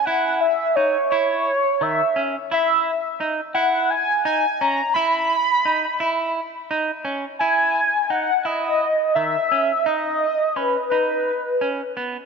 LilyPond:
<<
  \new Staff \with { instrumentName = "Analog synth lead" } { \time 7/8 \key cis \dorian \tempo 4 = 86 fis''8 e''8 cis''8 cis''4 e''8. r16 | e''4 r8 fis''8 gis''8 gis''8 ais''8 | b''2~ b''8 r4 | gis''4 fis''8 dis''4 e''4 |
dis''4 b'8 b'4. r8 | }
  \new Staff \with { instrumentName = "Clean electric guitar" } { \time 7/8 \key cis \dorian e'4 dis'8 e'4 dis8 cis'8 | e'4 dis'8 e'4 dis'8 cis'8 | e'4 dis'8 e'4 dis'8 cis'8 | e'4 dis'8 e'4 dis8 cis'8 |
dis'4 cis'8 dis'4 cis'8 b8 | }
>>